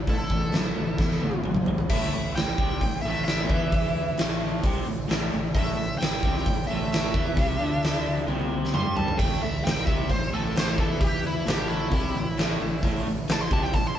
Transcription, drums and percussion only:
0.07 kick, open hi-hat
0.30 kick
0.52 snare, open hi-hat
0.98 kick, snare
1.11 snare
1.21 high tom
1.32 high tom
1.44 mid tom
1.54 mid tom
1.66 floor tom
1.78 floor tom
1.90 kick, crash
2.36 snare, open hi-hat
2.58 kick
2.81 kick, open hi-hat
3.26 snare, open hi-hat
3.50 kick
3.72 kick, open hi-hat
4.17 snare, open hi-hat
4.63 kick, open hi-hat
5.09 snare, open hi-hat
5.55 kick, open hi-hat
6.01 snare, open hi-hat
6.23 kick
6.37 snare
6.46 kick, open hi-hat
6.92 snare, open hi-hat
7.14 kick
7.37 kick, open hi-hat
7.83 snare, open hi-hat
8.28 high tom
8.40 high tom
8.65 snare
8.74 mid tom
8.97 floor tom
9.08 floor tom
9.19 kick, crash
9.65 snare, open hi-hat
9.87 kick
10.10 kick, open hi-hat
10.56 snare, open hi-hat
10.78 kick
11.01 kick, open hi-hat
11.47 snare, open hi-hat
11.91 kick, open hi-hat
12.38 snare, open hi-hat
12.83 kick, open hi-hat
13.28 snare, open hi-hat
13.51 kick
13.64 snare
13.73 kick, open hi-hat

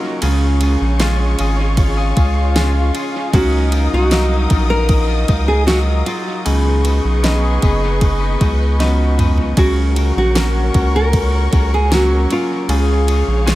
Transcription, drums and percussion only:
0.22 ride
0.61 ride
1.00 snare, ride
1.39 ride
1.77 kick, ride
2.17 kick, ride
2.56 snare, ride
2.95 ride
3.33 kick, ride
3.72 ride
4.11 snare, ride
4.50 kick, ride
4.89 kick, ride
5.28 kick, ride
5.68 snare, ride
6.06 ride
6.46 ride
6.85 ride
7.24 snare, ride
7.62 kick, ride
8.01 kick, ride
8.41 kick, ride
8.80 snare, ride
9.19 mid tom, ride
9.38 floor tom
9.57 kick, ride
9.96 ride
10.35 snare, ride
10.74 kick, ride
11.13 kick, ride
11.53 kick, ride
11.92 snare, ride
12.31 ride
12.69 ride
13.08 ride
13.47 snare, ride

